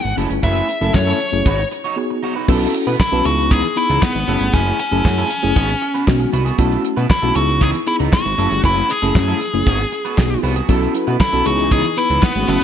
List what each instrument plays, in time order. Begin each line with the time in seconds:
Already playing: lead electric guitar G#5
0.05 analog synth bass G#1, muted clean electric guitar stroke, closed hi-hat
0.17 analog synth bass F#1, tine electric piano A3 C#4 E4 G#4, clean electric guitar C#4 E4 A4, closed hi-hat
0.30 analog synth bass G1, muted clean electric guitar stroke, closed hi-hat
0.43 analog synth bass F#1, clean electric guitar C#4 E4 B4, lead electric guitar E5, kick, closed hi-hat
0.56 closed hi-hat
0.68 muted clean electric guitar stroke, closed hi-hat
0.81 analog synth bass F#1, tine electric piano A3 C#4 E4 A4, clean electric guitar C#4 E4 A4, closed hi-hat
0.94 analog synth bass F#2, lead electric guitar C#5, muted clean electric guitar stroke, kick, snare, clap
1.07 clean electric guitar C#4 E4 A4, closed hi-hat
1.20 muted clean electric guitar stroke, closed hi-hat
1.32 analog synth bass F#1, tine electric piano A3 C#4 E4 G#4, muted clean electric guitar stroke, closed hi-hat
1.46 analog synth bass G#1, clean electric guitar D#4 F#4 B4, kick, closed hi-hat
1.59 muted clean electric guitar stroke, closed hi-hat
1.71 muted clean electric guitar stroke, closed hi-hat
1.84 clean electric guitar D#4 F#4 C#5, closed hi-hat
1.96 tine electric piano B3 D#4 F#4 G#4, muted clean electric guitar stroke
2.10 muted clean electric guitar stroke
2.23 clean electric guitar D#4 F#4 C#5
2.36 clean electric guitar D#4 F#4 B4
2.48 analog synth bass B1, clean electric guitar B3 E4 A4, tine electric piano C#4 E4 F#4 A4, kick, crash
2.62 closed hi-hat
2.74 muted clean electric guitar stroke, closed hi-hat
2.87 analog synth bass B2, clean electric guitar B3 E4 B4, closed hi-hat
2.99 lead electric guitar E4, muted clean electric guitar stroke, kick, snare, clap
3.12 analog synth bass B1, clean electric guitar B3 E4 A4, tine electric piano C#4 E4 F#4 B4, closed hi-hat
3.25 analog synth bass C#2, tine electric piano B3 D#4 E4 G#4, lead electric guitar F#4, muted clean electric guitar stroke, closed hi-hat
3.38 muted clean electric guitar stroke, closed hi-hat
3.51 clean electric guitar E3 B3 D#4, lead electric guitar G#4, kick, closed hi-hat
3.64 muted clean electric guitar stroke, closed hi-hat
3.76 tine electric piano B3 D#4 E4 G#4, lead electric guitar E4, muted clean electric guitar stroke, closed hi-hat
3.89 analog synth bass C#2, clean electric guitar E3 B3 D#4, closed hi-hat
4.02 lead electric guitar B3, kick, snare, clap
4.15 analog synth bass G#1, muted clean electric guitar stroke, closed hi-hat
4.27 analog synth bass F#1, tine electric piano A3 C#4 E4 G#4, clean electric guitar C#4 E4 A4, closed hi-hat
4.40 analog synth bass G1, muted clean electric guitar stroke, closed hi-hat
4.53 analog synth bass F#1, clean electric guitar C#4 E4 B4, lead electric guitar C#4, kick, closed hi-hat
4.67 closed hi-hat
4.79 lead electric guitar C#4, muted clean electric guitar stroke, closed hi-hat
4.91 analog synth bass F#1, tine electric piano A3 C#4 E4 G#4, clean electric guitar C#4 E4 A4, closed hi-hat
5.05 analog synth bass F#2, muted clean electric guitar stroke, kick, snare, clap
5.17 clean electric guitar C#4 E4 A4, closed hi-hat
5.30 muted clean electric guitar stroke, closed hi-hat
5.43 analog synth bass F#1, tine electric piano A3 C#4 E4 G#4, muted clean electric guitar stroke, closed hi-hat
5.56 analog synth bass G#1, clean electric guitar B3 F#4 G#4, kick, closed hi-hat
5.69 muted clean electric guitar stroke, closed hi-hat
5.81 muted clean electric guitar stroke, closed hi-hat
5.94 clean electric guitar B3 F#4 B4, closed hi-hat
6.07 analog synth bass B1, tine electric piano G#3 B3 D#4 F#4, muted clean electric guitar stroke, kick, snare, clap
6.20 muted clean electric guitar stroke, closed hi-hat
6.33 analog synth bass C2, clean electric guitar B3 F#4 B4, closed hi-hat
6.45 clean electric guitar B3 F#4 G#4, closed hi-hat
6.58 analog synth bass B1, tine electric piano A3 C#4 E4 F#4, clean electric guitar B3 E4 A4, kick, closed hi-hat
6.72 closed hi-hat
6.84 muted clean electric guitar stroke, closed hi-hat
6.96 analog synth bass B2, clean electric guitar B3 E4 B4, closed hi-hat
7.09 lead electric guitar E4, muted clean electric guitar stroke, kick, snare, clap
7.22 analog synth bass B1, tine electric piano A3 C#4 E4 F#4, clean electric guitar B3 E4 A4, closed hi-hat
7.35 analog synth bass C#2, tine electric piano B3 D#4 E4 G#4, lead electric guitar F#4, muted clean electric guitar stroke, closed hi-hat
7.48 muted clean electric guitar stroke, closed hi-hat
7.61 clean electric guitar E3 B3 D#4, lead electric guitar G#4, kick, closed hi-hat
7.74 muted clean electric guitar stroke, closed hi-hat
7.86 tine electric piano B3 D#4 E4 G#4, lead electric guitar E4, muted clean electric guitar stroke, closed hi-hat
7.99 analog synth bass C#2, clean electric guitar E3 B3 D#4, closed hi-hat
8.13 lead electric guitar F#4, kick, snare, clap
8.25 analog synth bass G#1, muted clean electric guitar stroke, closed hi-hat
8.38 analog synth bass F#1, tine electric piano A3 C#4 E4 G#4, clean electric guitar C#4 E4 A4, closed hi-hat
8.51 analog synth bass G1, muted clean electric guitar stroke, closed hi-hat
8.63 analog synth bass F#1, clean electric guitar C#4 E4 B4, lead electric guitar E4, kick, closed hi-hat
8.77 closed hi-hat
8.89 lead electric guitar G#4, muted clean electric guitar stroke, closed hi-hat
9.02 analog synth bass F#1, tine electric piano A3 C#4 E4 G#4, clean electric guitar C#4 E4 A4, closed hi-hat
9.15 analog synth bass F#2, muted clean electric guitar stroke, kick, snare, clap
9.28 clean electric guitar C#4 E4 A4, closed hi-hat
9.41 muted clean electric guitar stroke, closed hi-hat
9.53 analog synth bass F#1, tine electric piano A3 C#4 E4 G#4, muted clean electric guitar stroke, closed hi-hat
9.66 analog synth bass G#1, clean electric guitar B3 F#4 G#4, kick, closed hi-hat
9.79 muted clean electric guitar stroke, closed hi-hat
9.92 muted clean electric guitar stroke, closed hi-hat
10.05 clean electric guitar B3 F#4 B4, closed hi-hat
10.17 analog synth bass B1, tine electric piano B3 D#4 F#4 G#4, muted clean electric guitar stroke, kick, snare, clap
10.30 muted clean electric guitar stroke, closed hi-hat
10.43 analog synth bass C2, clean electric guitar B3 F#4 B4, open hi-hat
10.56 clean electric guitar B3 F#4 G#4, closed hi-hat
10.69 analog synth bass B1, analog polysynth F#3 E4 A4, clean electric guitar B3 E4 A4, tine electric piano C#4 E4 F#4 A4, kick, closed hi-hat
10.82 closed hi-hat
10.94 analog polysynth F#3 E4 B4, muted clean electric guitar stroke, closed hi-hat
11.07 analog synth bass B2, clean electric guitar B3 E4 B4, closed hi-hat
11.20 analog polysynth F#3 E4 A4, lead electric guitar E4, muted clean electric guitar stroke, kick, snare, clap
11.32 analog synth bass B1, clean electric guitar B3 E4 A4, tine electric piano C#4 E4 F#4 A4, closed hi-hat
11.45 analog synth bass C#2, analog polysynth E3 D#4 G#4, tine electric piano B3 D#4 E4 G#4, lead electric guitar F#4, muted clean electric guitar stroke, closed hi-hat
11.58 muted clean electric guitar stroke, closed hi-hat
11.71 clean electric guitar E3 B3 D#4, lead electric guitar G#4, kick, closed hi-hat
11.84 muted clean electric guitar stroke, closed hi-hat
11.97 tine electric piano B3 D#4 E4 B4, lead electric guitar E4, muted clean electric guitar stroke, closed hi-hat
12.10 analog synth bass C#2, clean electric guitar E3 B3 D#4, closed hi-hat
12.23 lead electric guitar B3, kick, snare, clap
12.35 analog synth bass G#1, analog polysynth C#3 A3 F#4, muted clean electric guitar stroke, closed hi-hat
12.48 analog synth bass F#1, tine electric piano A3 C#4 E4 G#4, lead electric guitar B3, clean electric guitar C#4 E4 A4, closed hi-hat